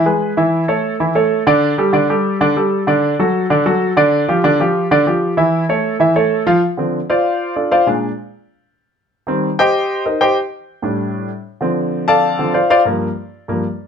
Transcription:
grand piano
0.06 G#3 G#4 B4
0.37 E3 E4 E5
0.68 A3 A4 C#5
1.00 E3 E4 E5
1.15 A3 A4 C#5
1.47 D3 D4 D5
1.78 G3 G4 A4
1.93 D3 D4 D5
2.10 G3 G4 A4
2.41 D3 D4 D5
2.56 G3 G4 A4
2.87 D3 D4 D5
3.19 F#3 F#4 A4
3.50 D3 D4 D5
3.66 F#3 F#4 A4
3.97 D3 D4 D5
4.28 F3 F4 G4
4.44 D3 D4 D5
4.60 F3 F4 G4
4.91 D3 D4 D5
5.06 F3 F4 G4
5.37 E3 E4 E5
5.69 A3 A4 C#5
6.00 E3 E4 E5
6.16 A3 A4 C#5
6.47 F3 F4 F5
6.77 D3 F3 C4
7.10 F4 C5 D5 F5
7.56 D4 F4 A4 D5
7.72 F4 C5 D5 F5
7.86 A#2 G#3 D4
9.27 D#3 G3 C4
9.59 G4 C5 D#5 G5
10.06 D#4 A#4 C5 D#5
10.21 G4 C5 D#5 G5
10.82 A2 G3 D4
11.61 D3 F3 C4
12.08 A4 D5 F5 A5
12.39 D3 F3 C4
12.54 F4 C5 D5 F5
12.70 F4 C5 D5 F5
12.85 G2 F3 A#3
13.48 G2 F3 A#3

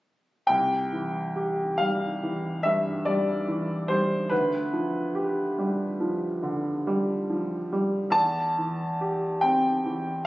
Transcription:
upright piano
0.47 C2 G5
0.92 E3
1.36 G4
1.78 G3 F5
2.23 E3
2.63 G2 E5
3.05 G3 D5
3.48 E3
3.88 G3 C5
4.30 D2 B4
4.73 F3
5.15 G4
5.58 G3
6.00 F3
6.43 D3
6.87 G3
7.30 F3
7.72 G3
8.10 E2 A5
8.58 E3
9.01 G4
9.41 C4 G5
9.85 E3

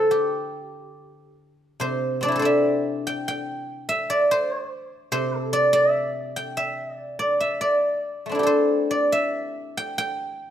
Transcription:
guzheng
Already playing: D3 A3 D4 E4 A4 C5 D5
0.11 G4
1.80 C3 C5
2.21 C4 D4 D5
2.28 E4 G4
2.36 A4 C5
2.42 D5 E5
3.07 G5
3.28 G5
3.89 E5
4.10 D5
4.31 C5
5.12 C3 C5
5.38 A4
5.53 D5
5.73 D5
5.91 E5
6.36 G5
6.57 E5
6.95 D5
7.19 D5
7.40 E5
7.61 D5
8.26 A3 C4
8.32 D4 E4
8.39 G4
8.43 A4 C5
8.91 D5
9.12 E5
9.77 G5
9.98 G5

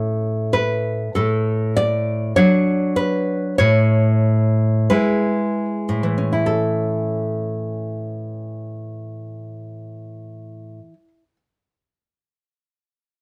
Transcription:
nylon-string guitar
Already playing: A2 A3 C#4 A4
0.53 B4
1.15 A2 A4
1.76 D5
2.36 F#3 D4 C#5
2.96 B4
3.58 A2 C#5
4.90 G#3 E4 B4
5.89 A2
6.03 E3
6.18 C#4
6.33 E4
6.46 A4

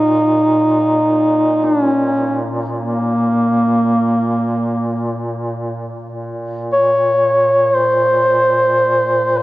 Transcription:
duduk
Already playing: A#2 D#4
1.65 D4
1.84 C#4
2.77 A#3
6.05 A#2
6.72 C#5
7.75 C5
9.38 B4

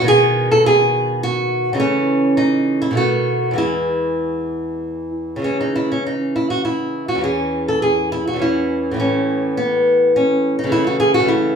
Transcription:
nylon-string guitar
0.01 B2 D#3
0.07 B3 G#4
0.51 A4
0.66 G#4
1.23 F#4
1.73 C#3 E3 D#4
1.78 A3 C#4
2.37 D#4
2.82 E4
2.91 B2 D#3
2.95 A3 F#4
3.51 E2 E3
3.56 G#3 E4
5.36 C#3 E3
5.42 G#3 C#4
5.61 D#4
5.76 E4
5.92 C#4
6.06 D#4
6.36 E4
6.50 F#4
6.65 E4
7.08 F#4
7.15 E2 E3
7.21 C#4 G#4
7.68 A4
7.82 G#4
8.12 E4
8.27 F#4
8.33 E2 E3
8.39 C#4 E4
8.91 A2 E3
8.96 A3 C#4
9.57 B3
10.16 C#4
10.59 D#4
10.64 C#3 E3
10.69 A3 E4
10.87 F#4
11.00 G#4
11.14 F#4
11.20 C#3 E3
11.25 A3 E4

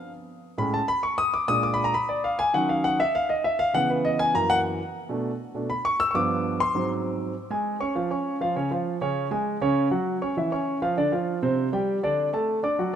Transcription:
grand piano
0.58 A2 G#3 C#4 B5
0.74 A5
0.88 B5
1.03 C#6
1.18 D#6
1.34 D6
1.48 A#2 G#3 D4 D#6
1.63 D6
1.74 B5
1.84 A#5
1.94 B5
2.09 D5
2.24 F5
2.39 G#5
2.54 D#3 F#3 C#4 F#5
2.69 F5
2.84 F#5
3.00 E5
3.15 F5
3.29 D#5
3.44 E5
3.59 F5
3.73 C#3 E3 B3 F#5
3.90 B4
4.05 D#5
4.19 G#5
4.34 F#2 E3 A#3 A#5
4.50 F#5
5.09 B2 A3 D4
5.54 B2 A3 D4
5.70 B5
5.85 C#6
6.00 E6
6.11 G2 C#6
6.15 F3 B3 D6
6.60 C6
6.75 G#2 F#3 C4
7.50 G#3 G#4 G#5
7.80 C#4 C#5 C#6
7.95 F3 F4 F5
8.11 C#4 C#5 C#6
8.41 F3 F4 F5
8.56 C#3 C#4 C#5
8.71 F3 F4 F5
9.01 C#3 C#4 C#5
9.31 G#3 G#4 G#5
9.61 C#3 C#4 C#5
9.91 F#3 F#4 F#5
10.21 C#4 C#5 C#6
10.37 E3 E4 E5
10.52 C#4 C#5 C#6
10.82 F3 F4 F5
10.97 D3 D4 D5
11.12 F3 F4 F5
11.42 C3 C4 C5
11.73 G3 G4 G5
12.03 D3 D4 D5
12.33 A3 A4 A5
12.63 D4 D5 D6
12.79 F#3 F#4 F#5

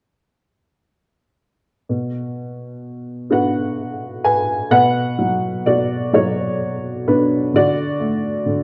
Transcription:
upright piano
1.89 B2
3.30 B3 D4 F#4 B4 F#5
4.24 B4 G#5
4.71 B2 B4 F#5
5.19 F#3
5.66 B2 F#4 D5
6.13 F#3 F#4 C#5
7.07 B2 D4 B4
7.54 D3 F#4 D5
8.00 A3
8.46 D3

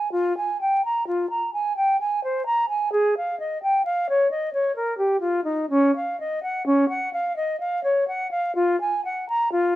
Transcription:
flute
Already playing: G#5
0.12 F4
0.37 G#5
0.61 G5
0.85 A#5
1.07 F4
1.30 A#5
1.54 G#5
1.77 G5
2.00 G#5
2.24 C5
2.46 A#5
2.69 G#5
2.92 G#4
3.17 F5
3.40 D#5
3.63 G5
3.85 F5
4.09 C#5
4.31 D#5
4.53 C#5
4.76 A#4
4.98 G4
5.21 F4
5.44 D#4
5.70 C#4
5.96 F5
6.20 D#5
6.43 F#5
6.66 C#4
6.89 F#5
7.13 F5
7.36 D#5
7.60 F5
7.84 C#5
8.08 F#5
8.31 F5
8.55 F4
8.81 G#5
9.05 F#5
9.29 A#5
9.52 F4

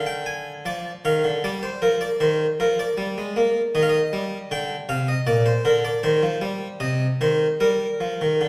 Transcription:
harpsichord
Already playing: D3
0.06 G5
0.26 G#5
0.66 F3 D5
1.05 D#3 F5
1.24 D3
1.44 G3 D5
1.63 C5
1.82 F3 A#4
2.01 D5
2.20 D#3 C5
2.60 F3 A#4
2.79 D5
2.98 G3
3.18 G#3
3.36 A#3
3.75 D#3 D#5
3.83 F5
3.89 D#5
4.13 G3
4.51 D3 G5
4.89 C3 F5
5.08 D#5
5.27 A#2 D5
5.46 C5
5.65 D3 A#4
5.85 D5
6.03 D#3 C5
6.23 F3
6.42 G3
6.80 C3 D#5
7.21 D#3 C5
7.60 G3 A#4
8.00 F3
8.21 D#3
8.41 D3

